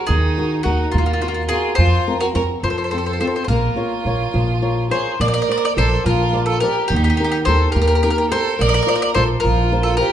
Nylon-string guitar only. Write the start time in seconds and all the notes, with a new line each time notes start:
0.09 D#3
0.38 D#4 F#4 A#4
0.65 D#4 F#4 A#4
0.94 A#3
1.23 D#4 F#4 A#4
1.50 D#4 F#4 A#4
1.79 F3
2.08 C4 F4 A#4
2.35 C4 F4 A#4
2.63 F3
2.92 C4 F4 A4
3.20 C4 F4 A4
3.49 A#3
3.76 F4 A#4 C#5
4.06 F4 A#4 C#5
4.34 F3
4.62 F4 A#4 C#5
4.90 F4 A#4 C#5
5.20 A#3
5.49 A#4 C5 D5
5.77 A#4 C5 D5
6.05 F3
6.33 A#4 C5 D5
6.63 A#4 C5 D5
6.92 D#3
7.20 D#4 G4 A#4
7.47 D#4 G4 A#4
7.76 A#3
8.03 D#4 G4 A#4
8.31 D#4 G4 A#4
8.59 A#3
8.86 F4 A#4 C5
9.16 F4 A#4 C5
9.43 F3
9.72 F4 A#4 C5
10.00 F4 A#4 C5